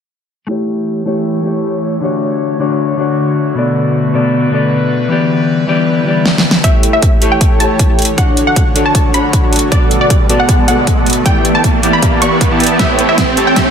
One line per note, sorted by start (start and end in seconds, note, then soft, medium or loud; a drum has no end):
0.47 2.01 E3 medium
0.47 1.03 A3 medium
0.47 3.53 A3 medium
0.47 1.04 E4 medium
0.47 2.01 G4 medium
0.47 1.04 G4 medium
0.47 3.53 C#5 medium
0.51 1.05 C#5 medium
1.05 1.42 A3 medium
1.05 1.42 E4 medium
1.05 1.43 G4 medium
1.05 1.43 C#5 loud
1.43 1.99 A3 medium
1.43 2.00 E4 medium
1.43 2.01 G4 medium
1.47 2.01 C#5 medium
2.01 2.57 D3 medium
2.01 6.60 D3 medium
2.01 2.58 D4 medium
2.01 5.07 F#4 medium
2.01 2.58 F#4 medium
2.05 2.59 C#5 medium
2.59 2.96 D3 medium
2.59 2.96 D4 medium
2.59 2.97 F#4 medium
2.59 2.97 C#5 loud
2.97 3.53 D3 medium
2.97 3.54 D4 medium
2.97 3.55 F#4 medium
2.97 3.55 C#5 medium
3.54 4.11 B2 medium
3.54 5.09 A3 medium
3.54 4.12 B3 medium
3.54 4.12 A4 medium
3.54 6.61 B4 medium
3.58 4.13 D5 medium
4.13 4.49 B2 medium
4.13 4.50 B3 medium
4.13 4.51 A4 medium
4.13 4.51 D5 loud
4.51 5.07 B2 medium
4.51 5.08 B3 medium
4.51 5.08 A4 medium
4.55 5.09 D5 medium
5.08 5.65 E3 medium
5.08 6.63 G3 medium
5.08 5.65 B3 medium
5.08 6.63 E4 medium
5.08 5.66 G4 medium
5.12 5.67 D5 loud
5.67 6.03 E3 medium
5.67 6.04 B3 medium
5.67 6.04 G4 medium
5.67 6.05 D5 loud
6.04 6.61 E3 medium
6.04 6.62 B3 medium
6.04 6.62 G4 medium
6.08 6.63 D5 medium
6.26 snare medium
6.38 snare medium
6.51 snare medium
6.62 8.16 E3 medium
6.62 7.19 A3 medium
6.62 11.22 A3 medium
6.62 7.19 E4 medium
6.62 6.91 E4 medium
6.62 8.16 G4 medium
6.62 6.91 G4 medium
6.62 7.20 G4 medium
6.62 6.91 A4 medium
6.62 6.91 C#5 medium
6.62 8.16 C#5 medium
6.62 7.21 C#5 medium
6.62 6.82 E5 loud
6.62 6.91 G5 loud
6.62 kick medium
6.62 closed hi-hat medium
6.62 riser medium
6.83 closed hi-hat medium
6.93 7.02 E4 medium
6.93 7.02 G4 medium
6.93 7.02 C#5 medium
6.93 7.17 E5 medium
7.02 kick medium
7.02 closed hi-hat medium
7.21 7.57 A3 medium
7.21 7.58 E4 medium
7.21 7.39 E4 medium
7.21 7.39 G4 medium
7.21 7.58 G4 medium
7.21 7.39 A4 medium
7.21 7.39 C#5 medium
7.21 7.59 C#5 loud
7.21 7.39 A5 medium
7.21 closed hi-hat medium
7.32 7.49 G5 medium
7.41 7.58 E4 medium
7.41 7.58 A4 medium
7.41 7.58 A5 medium
7.41 kick medium
7.41 closed hi-hat medium
7.58 8.15 A3 medium
7.58 8.15 E4 medium
7.58 7.87 E4 medium
7.58 7.87 G4 medium
7.58 8.16 G4 medium
7.58 7.87 A4 medium
7.58 7.87 C#5 medium
7.58 7.87 G5 medium
7.58 8.11 A5 medium
7.58 closed hi-hat medium
7.62 8.17 C#5 medium
7.79 kick medium
7.79 closed hi-hat medium
7.89 8.03 E4 medium
7.89 8.03 G4 medium
7.89 8.03 A4 medium
7.89 8.03 C#5 medium
7.89 8.03 G5 medium
7.99 closed hi-hat medium
8.02 closed hi-hat medium
8.05 closed hi-hat medium
8.16 8.72 D3 medium
8.16 11.23 D3 medium
8.16 8.73 D4 medium
8.16 8.45 D4 medium
8.16 11.23 F#4 medium
8.16 8.74 F#4 medium
8.16 9.70 C#5 medium
8.16 8.74 C#5 medium
8.16 8.36 F#5 loud
8.16 kick loud
8.16 closed hi-hat medium
8.37 closed hi-hat medium
8.47 8.55 D4 medium
8.47 8.55 F#4 medium
8.47 8.55 A4 medium
8.47 8.55 C#5 medium
8.47 8.55 F#5 medium
8.47 8.71 F#5 medium
8.56 kick medium
8.56 closed hi-hat medium
8.75 9.11 D3 medium
8.75 9.12 D4 medium
8.75 8.93 D4 medium
8.75 8.93 F#4 medium
8.75 9.12 F#4 medium
8.75 8.93 A4 medium
8.75 8.93 C#5 medium
8.75 9.12 C#5 loud
8.75 8.93 A5 medium
8.75 closed hi-hat medium
8.86 9.03 A5 medium
8.95 9.12 D4 medium
8.95 9.12 F#4 medium
8.95 9.12 A4 medium
8.95 9.12 C#5 medium
8.95 9.12 A5 loud
8.95 kick loud
8.95 closed hi-hat medium
9.12 9.69 D3 medium
9.12 9.69 D4 medium
9.12 9.41 D4 medium
9.12 9.41 F#4 medium
9.12 9.70 F#4 medium
9.12 9.41 A4 medium
9.12 9.41 C#5 medium
9.12 9.41 F#5 medium
9.12 9.64 B5 medium
9.12 closed hi-hat medium
9.16 9.71 C#5 medium
9.33 kick medium
9.33 closed hi-hat medium
9.43 9.57 D4 medium
9.43 9.57 F#4 medium
9.43 9.57 A4 medium
9.43 9.57 C#5 medium
9.43 9.57 F#5 medium
9.53 closed hi-hat medium
9.56 closed hi-hat medium
9.59 closed hi-hat medium
9.70 10.26 B2 medium
9.70 10.27 B3 medium
9.70 9.99 B3 medium
9.70 9.99 F#4 medium
9.70 9.99 A4 medium
9.70 10.28 A4 medium
9.70 11.24 B4 medium
9.70 9.99 D5 medium
9.70 9.90 D5 loud
9.70 10.28 D5 loud
9.70 9.99 F#5 loud
9.70 kick loud
9.70 closed hi-hat medium
9.91 closed hi-hat medium
10.01 10.09 B3 medium
10.01 10.09 F#4 medium
10.01 10.09 A4 medium
10.01 10.09 D5 medium
10.01 10.25 D5 medium
10.01 10.09 F#5 medium
10.10 kick loud
10.10 closed hi-hat medium
10.28 10.65 B2 medium
10.28 10.66 B3 medium
10.28 10.47 B3 medium
10.28 10.47 F#4 medium
10.28 10.47 A4 medium
10.28 10.66 A4 medium
10.28 10.47 D5 medium
10.28 10.66 D5 loud
10.28 10.47 A5 medium
10.28 closed hi-hat medium
10.40 10.57 F#5 medium
10.49 10.66 B3 medium
10.49 10.66 F#4 medium
10.49 10.66 A4 medium
10.49 10.66 D5 medium
10.49 10.66 A5 medium
10.49 kick loud
10.49 closed hi-hat medium
10.66 11.22 B2 medium
10.66 11.23 B3 medium
10.66 10.95 B3 medium
10.66 10.95 F#4 medium
10.66 10.95 A4 medium
10.66 11.24 A4 medium
10.66 10.95 D5 medium
10.66 10.95 F#5 medium
10.66 11.18 F#5 medium
10.66 closed hi-hat medium
10.70 11.24 D5 medium
10.87 kick medium
10.87 closed hi-hat medium
10.97 11.11 B3 medium
10.97 11.11 F#4 medium
10.97 11.11 A4 medium
10.97 11.11 D5 medium
10.97 11.11 F#5 medium
11.06 closed hi-hat soft
11.10 closed hi-hat medium
11.13 closed hi-hat medium
11.24 11.80 E3 medium
11.24 13.71 E3 medium
11.24 11.81 B3 medium
11.24 11.52 B3 medium
11.24 12.78 B3 medium
11.24 11.52 E4 medium
11.24 11.52 G4 medium
11.24 13.71 G4 medium
11.24 11.81 G4 medium
11.24 11.52 D5 medium
11.24 12.78 D5 medium
11.24 11.82 D5 loud
11.24 11.43 G5 loud
11.24 11.52 G5 loud
11.24 kick loud
11.24 closed hi-hat medium
11.45 closed hi-hat medium
11.55 11.63 B3 medium
11.55 11.63 E4 medium
11.55 11.63 G4 medium
11.55 11.63 D5 medium
11.55 11.63 G5 medium
11.55 11.78 A5 medium
11.64 kick loud
11.64 closed hi-hat medium
11.82 12.19 E3 loud
11.82 12.19 B3 medium
11.82 12.00 B3 medium
11.82 12.00 E4 medium
11.82 12.00 G4 medium
11.82 12.20 G4 medium
11.82 12.00 D5 medium
11.82 12.20 D5 loud
11.82 12.00 A5 medium
11.82 closed hi-hat medium
11.93 12.11 B5 medium
12.03 12.20 E4 medium
12.03 12.20 A5 medium
12.03 kick loud
12.03 closed hi-hat medium
12.20 12.76 E3 medium
12.20 12.77 B3 medium
12.20 12.49 B3 medium
12.20 12.49 E4 medium
12.20 12.49 G4 medium
12.20 12.78 G4 medium
12.20 12.49 D5 medium
12.20 12.78 D5 medium
12.20 12.49 B5 medium
12.20 12.72 C#6 medium
12.20 closed hi-hat medium
12.41 kick medium
12.41 closed hi-hat medium
12.51 12.58 B3 loud
12.51 12.58 E4 medium
12.51 12.58 G4 medium
12.51 12.58 D5 medium
12.51 12.58 A5 loud
12.60 12.77 B3 medium
12.60 12.77 E4 medium
12.60 12.77 G4 medium
12.60 12.77 D5 medium
12.60 12.77 A5 medium
12.60 closed hi-hat soft
12.64 closed hi-hat medium
12.67 closed hi-hat medium
12.77 13.34 A3 medium
12.77 13.71 A3 medium
12.77 13.35 E4 medium
12.77 13.06 G4 medium
12.77 13.35 G4 medium
12.77 13.06 A4 medium
12.77 13.71 C#5 loud
12.77 12.97 E5 medium
12.77 kick medium
12.77 snare soft
12.77 closed hi-hat medium
12.81 13.36 C#5 medium
12.99 closed hi-hat medium
13.09 13.17 E4 medium
13.09 13.17 G4 medium
13.09 13.17 A4 medium
13.09 13.17 C#5 medium
13.09 13.32 E5 medium
13.09 13.17 G5 medium
13.18 kick loud
13.18 snare medium
13.18 closed hi-hat medium
13.36 13.53 A3 medium
13.36 13.54 E4 medium
13.36 13.54 G4 medium
13.36 13.55 G4 medium
13.36 13.54 A4 medium
13.36 13.54 C#5 medium
13.36 13.55 C#5 loud
13.36 13.54 A5 medium
13.36 closed hi-hat medium
13.47 13.55 G5 medium
13.54 13.71 A3 medium
13.54 13.71 E4 medium
13.54 13.71 G4 medium
13.54 13.71 A4 medium
13.54 13.71 C#5 medium
13.54 13.71 C#5 loud
13.54 13.71 E5 medium
13.54 13.71 G5 loud
13.54 kick loud
13.54 snare medium
13.54 closed hi-hat medium